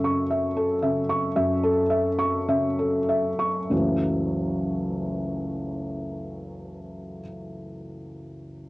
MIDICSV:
0, 0, Header, 1, 2, 480
1, 0, Start_track
1, 0, Key_signature, 3, "minor"
1, 0, Tempo, 1065719
1, 619, Tempo, 1123596
1, 1099, Tempo, 1212121
1, 1579, Time_signature, 4, 2, 24, 8
1, 1579, Tempo, 1181102
1, 3604, End_track
2, 0, Start_track
2, 0, Title_t, "Felt piano"
2, 0, Program_c, 0, 0
2, 0, Control_c, 0, 64, 127
2, 0, Note_on_c, 0, 42, 62
2, 0, Note_on_c, 0, 49, 54
2, 0, Note_on_c, 0, 69, 55
2, 0, Note_on_c, 0, 76, 61
2, 0, Note_on_c, 0, 85, 79
2, 20, Note_off_c, 0, 85, 0
2, 20, Note_on_c, 0, 85, 62
2, 92, Note_off_c, 0, 76, 0
2, 138, Note_on_c, 0, 76, 59
2, 210, Note_off_c, 0, 85, 0
2, 255, Note_off_c, 0, 69, 0
2, 255, Note_on_c, 0, 69, 59
2, 284, Note_off_c, 0, 49, 0
2, 329, Note_off_c, 0, 76, 0
2, 371, Note_on_c, 0, 76, 59
2, 372, Note_on_c, 0, 49, 57
2, 448, Note_off_c, 0, 69, 0
2, 493, Note_on_c, 0, 85, 66
2, 568, Note_off_c, 0, 76, 0
2, 602, Note_off_c, 0, 42, 0
2, 613, Note_on_c, 0, 76, 74
2, 614, Note_on_c, 0, 42, 69
2, 687, Note_off_c, 0, 85, 0
2, 730, Note_on_c, 0, 69, 72
2, 757, Note_off_c, 0, 49, 0
2, 804, Note_off_c, 0, 76, 0
2, 843, Note_on_c, 0, 76, 68
2, 924, Note_off_c, 0, 69, 0
2, 965, Note_on_c, 0, 85, 71
2, 1044, Note_off_c, 0, 76, 0
2, 1092, Note_on_c, 0, 49, 64
2, 1094, Note_on_c, 0, 76, 67
2, 1164, Note_off_c, 0, 85, 0
2, 1214, Note_on_c, 0, 69, 63
2, 1287, Note_off_c, 0, 76, 0
2, 1333, Note_on_c, 0, 76, 62
2, 1411, Note_off_c, 0, 69, 0
2, 1452, Note_on_c, 0, 85, 59
2, 1481, Note_off_c, 0, 49, 0
2, 1529, Note_off_c, 0, 76, 0
2, 1561, Note_off_c, 0, 42, 0
2, 1575, Note_off_c, 0, 85, 0
2, 1575, Note_on_c, 0, 30, 63
2, 1578, Note_on_c, 0, 37, 51
2, 1578, Note_on_c, 0, 52, 51
2, 1580, Note_on_c, 0, 54, 53
2, 1580, Note_on_c, 0, 57, 49
2, 1583, Note_on_c, 0, 61, 50
2, 1587, Control_c, 0, 64, 0
2, 1674, Control_c, 0, 64, 127
2, 2997, Note_off_c, 0, 30, 0
2, 2999, Note_off_c, 0, 37, 0
2, 3000, Note_off_c, 0, 52, 0
2, 3001, Note_off_c, 0, 54, 0
2, 3002, Note_off_c, 0, 57, 0
2, 3004, Note_off_c, 0, 61, 0
2, 3604, End_track
0, 0, End_of_file